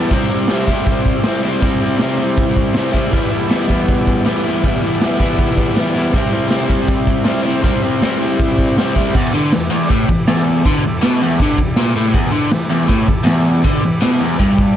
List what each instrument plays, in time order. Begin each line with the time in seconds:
Already playing: overdriven electric guitar E3 G3 B3 E4
0.04 shaker
0.10 overdriven electric guitar C3 G3, transistor combo organ E4 G4 C5, kick, open hi-hat, shaker
0.15 overdriven electric guitar C4 E4
0.23 shaker
0.28 transistor combo organ E4 G4 C5, overdriven electric guitar E4, open hi-hat, shaker
0.32 overdriven electric guitar G3 C4
0.47 overdriven electric guitar C3, transistor combo organ E4 G4 C5, snare, open hi-hat, shaker
0.51 overdriven electric guitar G3 C4 E4
0.66 overdriven electric guitar C4 E4, transistor combo organ E4 G4 C5, kick, open hi-hat, shaker
0.71 overdriven electric guitar G3
0.79 shaker
0.86 transistor combo organ E4 G4 C5, kick, open hi-hat, shaker
1.05 transistor combo organ E4 G4 C5, kick, open hi-hat, shaker
1.16 shaker
1.23 overdriven electric guitar C3 G3 C4, transistor combo organ E4 G4 C5, snare, open hi-hat, shaker
1.28 overdriven electric guitar E4
1.43 overdriven electric guitar C4 E4, transistor combo organ E4 G4 C5, open hi-hat, shaker
1.47 overdriven electric guitar G3
1.53 shaker
1.61 overdriven electric guitar C3 G3 C4, transistor combo organ E4 G4, kick, open hi-hat, shaker
1.65 overdriven electric guitar E4, transistor combo organ C5
1.80 overdriven electric guitar C4 E4, transistor combo organ E4 G4, open hi-hat, shaker
1.85 overdriven electric guitar G3, transistor combo organ D5
1.97 overdriven electric guitar C3 G3 C4, snare, open hi-hat, shaker
2.02 overdriven electric guitar E4, transistor combo organ E4 G4 C5
2.11 shaker
2.17 overdriven electric guitar C4 E4, transistor combo organ E4, open hi-hat, shaker
2.21 overdriven electric guitar G3, transistor combo organ G4 C5
2.37 transistor combo organ E4 G4 B4, kick, open hi-hat, shaker
2.56 transistor combo organ E4 G4, kick, open hi-hat, shaker
2.60 transistor combo organ C5
2.68 shaker
2.74 overdriven electric guitar C3 G3 C4, transistor combo organ E4 G4, snare, open hi-hat, shaker
2.78 overdriven electric guitar E4, transistor combo organ C5
2.88 shaker
2.93 overdriven electric guitar C4 E4, transistor combo organ E4, kick, open hi-hat, shaker
2.97 overdriven electric guitar G3, transistor combo organ G4 C5
3.05 shaker
3.11 overdriven electric guitar E3 G3 B3, transistor combo organ E4, kick, open hi-hat, shaker
3.16 overdriven electric guitar E4, transistor combo organ G4 B4
3.24 shaker
3.30 overdriven electric guitar B3 E4, open hi-hat
3.35 overdriven electric guitar G3, transistor combo organ E4 G4 A4
3.48 overdriven electric guitar E3 G3 B3, transistor combo organ E4, snare, open hi-hat, shaker
3.53 overdriven electric guitar E4, transistor combo organ G4 B4
3.68 overdriven electric guitar B3 E4, transistor combo organ E4 G4, kick, open hi-hat, shaker
3.72 overdriven electric guitar G3, transistor combo organ B4
3.79 shaker
3.88 transistor combo organ E4 G4 B4, kick, open hi-hat, shaker
4.00 shaker
4.07 transistor combo organ E4 G4 B4, kick, open hi-hat, shaker
4.18 shaker
4.25 overdriven electric guitar E3 G3 B3 E4, transistor combo organ E4 G4 B4, snare, open hi-hat, shaker
4.44 overdriven electric guitar B3 E4, transistor combo organ E4 G4 B4, open hi-hat, shaker
4.50 overdriven electric guitar G3
4.57 shaker
4.64 overdriven electric guitar E3 G3 B3, transistor combo organ E4 G4 B4, kick, open hi-hat, shaker
4.68 overdriven electric guitar E4
4.74 shaker
4.82 overdriven electric guitar B3 E4, transistor combo organ E4 G4 A4, open hi-hat, shaker
4.87 overdriven electric guitar G3
5.01 overdriven electric guitar E3 G3 B3, transistor combo organ E4 G4 B4, snare, open hi-hat, shaker
5.06 overdriven electric guitar E4
5.20 overdriven electric guitar G3 B3 E4, transistor combo organ E4 G4 B4, kick, open hi-hat, shaker
5.30 shaker
5.38 transistor combo organ E4 G4 B4, kick, open hi-hat, shaker
5.49 snare, shaker
5.57 transistor combo organ E4 G4 B4, kick, open hi-hat, shaker
5.67 shaker
5.76 overdriven electric guitar E3 G3 B3, transistor combo organ E4 G4 B4, snare, open hi-hat, shaker
5.80 overdriven electric guitar E4
5.95 overdriven electric guitar B3 E4, transistor combo organ E4 G4, open hi-hat, shaker
5.99 overdriven electric guitar G3, transistor combo organ B4
6.05 shaker
6.13 overdriven electric guitar C3 G3 C4, transistor combo organ E4 G4 C5, kick, open hi-hat, shaker
6.18 overdriven electric guitar E4
6.23 shaker
6.31 overdriven electric guitar C4 E4, transistor combo organ E4 G4 C5, open hi-hat, shaker
6.35 overdriven electric guitar G3
6.48 overdriven electric guitar C3 G3, transistor combo organ E4 G4 C5, snare, open hi-hat
6.52 overdriven electric guitar C4 E4, shaker
6.67 overdriven electric guitar C4 E4, transistor combo organ E4 G4 C5, kick, open hi-hat
6.71 overdriven electric guitar G3, shaker
6.81 shaker
6.88 transistor combo organ E4 G4 C5, kick, open hi-hat, shaker
7.07 transistor combo organ E4 G4 C5, kick, open hi-hat, shaker
7.17 shaker
7.24 overdriven electric guitar C3 G3 C4, transistor combo organ E4, snare, open hi-hat, shaker
7.29 overdriven electric guitar E4, transistor combo organ G4 C5
7.43 overdriven electric guitar C4 E4, transistor combo organ E4 G4, open hi-hat, shaker
7.48 overdriven electric guitar G3, transistor combo organ C5
7.56 shaker
7.62 overdriven electric guitar C3 G3 C4, transistor combo organ E4 G4 C5, kick, open hi-hat, shaker
7.66 overdriven electric guitar E4
7.74 shaker
7.81 overdriven electric guitar C4 E4, transistor combo organ E4 G4 C5, open hi-hat, shaker
7.86 overdriven electric guitar G3
8.00 overdriven electric guitar C3 G3 C4, transistor combo organ E4 G4 C5, snare, open hi-hat, shaker
8.05 overdriven electric guitar E4
8.12 shaker
8.20 overdriven electric guitar C4 E4, transistor combo organ E4 G4 C5, open hi-hat, shaker
8.24 overdriven electric guitar G3
8.39 transistor combo organ E4 G4 B4, kick, open hi-hat, shaker
8.51 shaker
8.58 transistor combo organ E4 G4 C5, kick, open hi-hat, shaker
8.70 shaker
8.76 overdriven electric guitar C3 G3 C4, transistor combo organ E4 G4, snare, open hi-hat, shaker
8.80 overdriven electric guitar E4, transistor combo organ C5
8.88 shaker
8.95 overdriven electric guitar C4 E4, kick, open hi-hat, shaker
8.99 overdriven electric guitar G3, transistor combo organ E4 G4 C5
9.07 shaker
9.15 overdriven electric guitar E2, transistor combo organ E4 G4 B4, kick, crash, shaker
9.34 overdriven electric guitar D3, transistor combo organ E4 G4 B4, crash, shaker
9.52 overdriven electric guitar E2, transistor combo organ E4 G4, snare, crash, shaker
9.56 transistor combo organ B4
9.62 shaker
9.70 overdriven electric guitar E2, transistor combo organ G4, crash, shaker
9.75 transistor combo organ E4 D5
9.90 overdriven electric guitar A2, transistor combo organ E4 G4 B4, kick, crash, shaker
10.09 overdriven electric guitar E2, transistor combo organ E4 G4 B4, kick, crash, shaker
10.19 shaker
10.28 overdriven electric guitar E2, transistor combo organ E4 G4 A4, snare, crash, shaker
10.47 transistor combo organ E4 G4 A4, crash, shaker
10.65 overdriven electric guitar D3, transistor combo organ E4 G4 B4, kick, crash, shaker
10.76 shaker
10.84 overdriven electric guitar E2, transistor combo organ E4 G4, crash, shaker
10.89 transistor combo organ A4
11.02 overdriven electric guitar B2, transistor combo organ E4 G4 B4, snare, crash, shaker
11.13 shaker
11.21 overdriven electric guitar E2, transistor combo organ E4 G4 B4, crash, shaker
11.39 overdriven electric guitar D3, transistor combo organ E4 G4 B4, kick, crash, shaker
11.58 overdriven electric guitar E2, transistor combo organ E4 G4, kick, crash, shaker
11.62 transistor combo organ D5
11.69 shaker
11.76 overdriven electric guitar A#2, transistor combo organ E4 G4, snare, crash, shaker
11.81 transistor combo organ B4
11.95 overdriven electric guitar A2, transistor combo organ E4 G4 B4, crash, shaker
12.14 overdriven electric guitar E2, transistor combo organ E4 G4 B4, kick, crash, shaker
12.25 shaker
12.32 overdriven electric guitar D3, transistor combo organ E4 G4 B4, crash, shaker
12.52 overdriven electric guitar E2, transistor combo organ E4 G4 B4, snare, crash, shaker
12.63 shaker
12.71 overdriven electric guitar E2, transistor combo organ E4 G4 B4, crash, shaker
12.88 overdriven electric guitar A2, transistor combo organ E4 G4 B4, kick, crash, shaker
13.07 overdriven electric guitar E2, transistor combo organ E4 G4 A4, kick, crash, shaker
13.19 shaker
13.24 overdriven electric guitar E2, snare, crash, shaker
13.29 transistor combo organ E4 G4 A4
13.46 transistor combo organ E4 G4 B4, crash, shaker
13.64 overdriven electric guitar D3, transistor combo organ E4 G4 B4, kick, crash, shaker
13.75 shaker
13.84 overdriven electric guitar E2, transistor combo organ E4 G4 B4, crash, shaker
13.94 shaker
14.02 overdriven electric guitar B2, transistor combo organ E4 G4 B4, snare, crash, shaker
14.13 shaker
14.18 overdriven electric guitar E2, transistor combo organ E4 G4 B4, crash, shaker
14.38 overdriven electric guitar G2, transistor combo organ E4 G4 B4, kick, crash, shaker
14.50 shaker
14.58 transistor combo organ E4 G4 B4, kick, crash, shaker